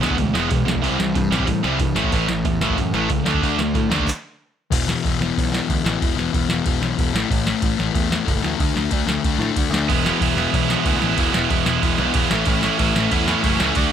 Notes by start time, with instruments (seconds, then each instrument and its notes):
0.01 picked electric bass D2, distorted electric guitar E2 B2 E3 G#3 B3, snare
0.11 kick
0.17 picked electric bass D2, distorted electric guitar E2 B2 E3 G#3, kick, open hi-hat
0.34 picked electric bass E1, distorted electric guitar E2 B2 E3 G#3 B3, snare
0.50 picked electric bass B1, distorted electric guitar E2 B2 E3 G#3, kick, open hi-hat
0.65 picked electric bass B1, distorted electric guitar E2 B2 E3 G#3, snare
0.76 kick
0.82 picked electric bass C2, distorted electric guitar C3 E3 G3 C4, kick, open hi-hat
0.99 picked electric bass C2, distorted electric guitar C3 E3 G3, snare
1.15 picked electric bass G2, distorted electric guitar C3 E3 G3, kick, open hi-hat
1.31 picked electric bass A1, distorted electric guitar C3 E3 G3 C4, snare
1.40 kick
1.47 picked electric bass A2, distorted electric guitar C3 E3 G3, kick, open hi-hat
1.63 picked electric bass C2, distorted electric guitar C3 E3 G3 C4, snare
1.79 picked electric bass G2, distorted electric guitar C3 E3 G3, kick, open hi-hat
1.95 picked electric bass A1, distorted electric guitar A2 E3 A3, snare
2.04 kick
2.12 picked electric bass A1, distorted electric guitar A2 E3 A3, kick, open hi-hat
2.28 picked electric bass A1, distorted electric guitar A2 E3, snare
2.45 picked electric bass E2, distorted electric guitar A2 E3, kick, open hi-hat
2.61 picked electric bass F#1, distorted electric guitar A2 E3 A3, snare
2.69 kick
2.77 picked electric bass F#2, distorted electric guitar A2 E3, kick, open hi-hat
2.93 picked electric bass A1, distorted electric guitar A2 E3 A3, snare
3.10 picked electric bass C#2, distorted electric guitar A2 E3, kick, open hi-hat
3.25 picked electric bass D2, distorted electric guitar D3 A3 D4, snare
3.34 kick
3.42 picked electric bass D2, distorted electric guitar D3 A3 D4, kick, open hi-hat
3.58 picked electric bass D2, distorted electric guitar D3 A3, snare
3.74 picked electric bass A2, distorted electric guitar D3 A3, kick, open hi-hat
3.89 picked electric bass D#2, distorted electric guitar D3 A3 D4, snare
3.99 kick
4.07 kick, clap
4.71 picked electric bass E1, distorted electric guitar E2 B2 E3, kick, crash
4.87 distorted electric guitar E2 B2 E3, snare
5.03 picked electric bass E1, distorted electric guitar E2 B2 E3, kick, crash
5.19 picked electric bass E1, distorted electric guitar E2 B2 E3, snare
5.36 picked electric bass B1, distorted electric guitar E2 B2 E3, kick, crash
5.52 distorted electric guitar E2 B2 E3, snare
5.68 picked electric bass D2, distorted electric guitar E2 B2 E3, kick, crash
5.84 picked electric bass A1, distorted electric guitar E2 B2 E3, snare
6.00 picked electric bass E1, distorted electric guitar E2 B2 E3, kick, crash
6.17 picked electric bass E1, distorted electric guitar E2 B2 E3, snare
6.33 picked electric bass E1, distorted electric guitar E2 B2 E3, kick, crash
6.49 picked electric bass E1, distorted electric guitar E2 B2 E3, snare
6.65 picked electric bass E1, distorted electric guitar E2 B2 E3, kick, crash
6.81 picked electric bass B1, distorted electric guitar E2 B2 E3, snare
6.98 picked electric bass E1, distorted electric guitar E2 B2 E3, kick, crash
7.13 picked electric bass A1, distorted electric guitar A2 E3 A3, snare
7.30 picked electric bass A1, distorted electric guitar A2 E3 A3, kick, crash
7.45 distorted electric guitar A2 E3 A3, snare
7.61 picked electric bass A1, distorted electric guitar A2 E3 A3, kick, crash
7.78 picked electric bass A1, distorted electric guitar A2 E3 A3, snare
7.93 picked electric bass E2, distorted electric guitar A2 E3 A3, kick, crash
8.10 distorted electric guitar A2 E3 A3, snare
8.26 picked electric bass F#1, distorted electric guitar A2 E3 A3, kick, crash
8.42 picked electric bass D2, distorted electric guitar A2 E3 A3, snare
8.59 picked electric bass D2, distorted electric guitar D3 A3 D4, kick, crash
8.74 picked electric bass D2, distorted electric guitar D3 A3 D4, snare
8.91 picked electric bass D2, distorted electric guitar D3 A3 D4, kick, crash
9.06 picked electric bass D2, distorted electric guitar D3 A3 D4, snare
9.24 picked electric bass D2, distorted electric guitar D3 A3 D4, kick, crash
9.39 picked electric bass A2, distorted electric guitar D3 A3 D4, snare
9.56 picked electric bass D2, distorted electric guitar D3 A3 D4, kick, crash
9.70 picked electric bass D2, distorted electric guitar D3 A3 D4, snare
9.89 picked electric bass E1, distorted electric guitar E2 B2 E3 G#3 B3 E4, kick, crash
10.05 distorted electric guitar E2 B2 E3 G#3 B3 E4, snare
10.20 picked electric bass E1, distorted electric guitar E2 B2 E3 G#3 B3 E4, kick, crash
10.35 picked electric bass E1, distorted electric guitar E2 B2 E3 B3 E4, snare
10.39 distorted electric guitar G#3
10.52 picked electric bass B1, distorted electric guitar E2 B2 E3 G#3 B3 E4, kick, crash
10.68 distorted electric guitar E2 B2 E3 G#3 B3 E4, snare
10.83 picked electric bass D2, distorted electric guitar E2 B2 E3 G#3 B3 E4, kick, crash
11.00 picked electric bass A1, distorted electric guitar E2 B2 E3 G#3 B3 E4, snare
11.16 picked electric bass E1, distorted electric guitar E2 B2 E3 G#3 B3 E4, kick, crash
11.33 picked electric bass E1, distorted electric guitar E2 B2 E3 G#3 B3 E4, snare
11.50 picked electric bass E1, distorted electric guitar E2 B2 E3 G#3 B3 E4, kick, crash
11.66 picked electric bass E1, distorted electric guitar E2 B2 E3 G#3 B3 E4, snare
11.82 picked electric bass E1, distorted electric guitar E2 B2 E3 G#3 B3 E4, kick, crash
11.98 picked electric bass B1, distorted electric guitar E2 B2 E3 G#3 B3 E4, snare
12.14 picked electric bass E1, distorted electric guitar E2 B2 E3 G#3 B3 E4, kick, crash
12.31 picked electric bass A1, distorted electric guitar A2 E3 A3 C#4 E4, snare
12.45 picked electric bass A1, distorted electric guitar A2 E3 A3 C#4 E4, kick, crash
12.63 distorted electric guitar A2 E3 A3 C#4 E4, snare
12.78 picked electric bass A1, distorted electric guitar A2 E3 A3 C#4 E4, kick, crash
12.95 picked electric bass A1, distorted electric guitar A2 E3 A3 C#4 E4, snare
13.11 picked electric bass E2, distorted electric guitar A2 E3 A3 C#4 E4, kick, crash
13.27 distorted electric guitar A2 E3 A3 C#4 E4, snare
13.43 picked electric bass F#1, distorted electric guitar A2 E3 A3 C#4 E4, kick, crash
13.60 picked electric bass C#2, distorted electric guitar A2 E3 A3 C#4 E4, snare
13.75 picked electric bass D2, distorted electric guitar D3 A3 D4 F#4, kick, crash